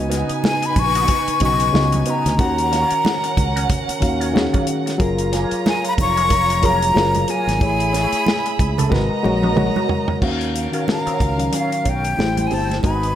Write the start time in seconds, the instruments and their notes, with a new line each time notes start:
Already playing: fingered electric bass C#2, reed electric piano C#3 B3 F#4 D#5, violin section D#4 B4 G#5
0.10 clean electric guitar B3 D#4 F#4, snare, closed hi-hat
0.29 muted fingered electric bass stroke, closed hi-hat
0.43 flute G#5, muted clean electric guitar stroke, snare, high conga
0.62 flute B5, muted clean electric guitar stroke, closed hi-hat
0.76 fingered electric bass A#1, flute C#6, kick, closed hi-hat, muted conga
0.95 clean electric guitar B3 D#4 F#4, closed hi-hat
1.08 kick, closed hi-hat, muted conga
1.27 muted clean electric guitar stroke, muted fingered electric bass stroke, closed hi-hat
1.40 fingered electric bass B1, reed electric piano C#3 B3 F#4 D#5, clean electric guitar B3 D#4 F#4, kick, closed hi-hat
1.45 flute C#6
1.60 muted clean electric guitar stroke, closed hi-hat
1.72 fingered electric bass C#2, reed electric piano C#3 B3 F#4 D#5, snare, high conga
1.92 muted clean electric guitar stroke, closed hi-hat, high conga
2.06 clean electric guitar B3 D#4 F#4, closed hi-hat
2.10 flute A#5
2.25 fingered electric bass D2, muted clean electric guitar stroke, snare, closed hi-hat
2.39 fingered electric bass D#2, reed electric piano D#3 C#4 F#4 F#5, violin section C#4 A#4 F#5, kick, closed hi-hat, muted conga
2.58 closed hi-hat
2.71 clean electric guitar F#3 C#4 F4, snare, closed hi-hat
2.90 muted fingered electric bass stroke, closed hi-hat
3.04 muted clean electric guitar stroke, snare, high conga
3.24 muted clean electric guitar stroke, closed hi-hat
3.37 fingered electric bass C#2, kick, closed hi-hat, muted conga
3.56 clean electric guitar F#3 C#4 F#4, closed hi-hat
3.69 muted clean electric guitar stroke, kick, closed hi-hat, muted conga, low conga
3.89 muted fingered electric bass stroke, muted clean electric guitar stroke, closed hi-hat
4.00 fingered electric bass D#2, reed electric piano D#3 C#4 F#4 F5, kick, closed hi-hat, muted conga
4.21 clean electric guitar F#3 C#4 F4, closed hi-hat
4.33 reed electric piano D#3 C#4 F#4 G#4, muted clean electric guitar stroke, snare, high conga
4.53 clean electric guitar F#3 C#4 F4, kick, closed hi-hat, high conga
4.67 muted clean electric guitar stroke, closed hi-hat
4.86 muted clean electric guitar stroke, snare, closed hi-hat
4.98 fingered electric bass F#1, reed electric piano F#3 F4 G#4 A#4, violin section F4 C#5 A#5, kick, closed hi-hat, muted conga
5.18 closed hi-hat
5.33 clean electric guitar A#3 F4 G#4, snare, closed hi-hat
5.51 muted fingered electric bass stroke, closed hi-hat
5.66 flute G#5, muted clean electric guitar stroke, snare, high conga
5.84 flute B5, muted clean electric guitar stroke, closed hi-hat
5.98 fingered electric bass F1, flute C#6, kick, closed hi-hat, muted conga
6.17 clean electric guitar A#3 F4 G#4, closed hi-hat
6.30 kick, closed hi-hat, muted conga
6.50 muted clean electric guitar stroke, closed hi-hat
6.62 reed electric piano F#3 F4 G#4 C#5, clean electric guitar A#3 F4 G#4, flute A#5, kick, closed hi-hat, muted conga
6.82 muted clean electric guitar stroke, closed hi-hat
6.94 fingered electric bass F#1, reed electric piano F#3 F4 G#4 A#4, muted clean electric guitar stroke, snare, high conga
7.15 muted clean electric guitar stroke, closed hi-hat, high conga
7.28 clean electric guitar A#3 F4 G#4, flute G#5, closed hi-hat
7.47 fingered electric bass G#1, muted clean electric guitar stroke, snare, closed hi-hat
7.59 fingered electric bass A1, reed electric piano A3 E4 G#4 C#5, violin section G#4 E5 B5, kick, closed hi-hat, muted conga
7.80 closed hi-hat
7.93 clean electric guitar C#4 E4 G#4, snare, closed hi-hat
8.12 muted fingered electric bass stroke, closed hi-hat
8.26 muted clean electric guitar stroke, snare, high conga
8.46 muted clean electric guitar stroke, closed hi-hat
8.59 fingered electric bass C#2, kick, closed hi-hat, muted conga
8.78 clean electric guitar C#4 E4 A4, closed hi-hat, low conga
8.90 fingered electric bass G#1, reed electric piano G#3 F#4 A#4 B4, violin section F#4 D#5 A#5, muted clean electric guitar stroke, kick, snare, muted conga, low conga
9.10 muted clean electric guitar stroke
9.23 fingered electric bass A#1, reed electric piano G#3 F#4 A#4 C#5, high tom, muted conga
9.43 clean electric guitar B3 F#4 A#4, high tom
9.56 reed electric piano G#3 F#4 A#4 C#5, muted clean electric guitar stroke, mid tom, high conga
9.76 clean electric guitar B3 F#4 A#4, high conga
9.89 muted clean electric guitar stroke, floor tom
10.08 muted clean electric guitar stroke, floor tom
10.21 fingered electric bass D#2, reed electric piano D#3 C#4 F#4 F5, clean electric guitar F#3 C#4 F4, violin section C#4 A#4 F5, kick, crash, muted conga
10.41 closed hi-hat
10.55 muted clean electric guitar stroke, closed hi-hat
10.72 reed electric piano D#3 C#4 F#4 A#4, clean electric guitar F#3 C#4 F4, closed hi-hat
10.87 flute A#5, muted clean electric guitar stroke, snare, high conga
11.06 clean electric guitar F#3 C#4 F#4, muted fingered electric bass stroke, closed hi-hat
11.20 fingered electric bass C#2, muted clean electric guitar stroke, kick, closed hi-hat, muted conga
11.37 reed electric piano D#3 F#3 C#4 F5, muted clean electric guitar stroke, closed hi-hat
11.53 clean electric guitar F#3 C#4 F4, flute F5, closed hi-hat, muted conga
11.72 muted clean electric guitar stroke, closed hi-hat
11.84 fingered electric bass B1, clean electric guitar F#3 C#4 F4, kick, closed hi-hat
11.89 flute G5
12.04 muted clean electric guitar stroke, closed hi-hat
12.17 fingered electric bass A1, reed electric piano A3 E4 G4 C5, violin section E4 C5 G5, snare, high conga
12.37 muted clean electric guitar stroke, closed hi-hat, high conga
12.47 clean electric guitar C4, flute G#5, open hi-hat
12.51 fingered electric bass G1, clean electric guitar E4 G4, flute A5
12.70 muted clean electric guitar stroke, snare, closed hi-hat, high conga
12.83 fingered electric bass G#1, reed electric piano G#3 D#4 F#4 B4, clean electric guitar B3 D#4 F#4, violin section D#4 B4 G#5, flute B5, kick, closed hi-hat, muted conga
13.03 closed hi-hat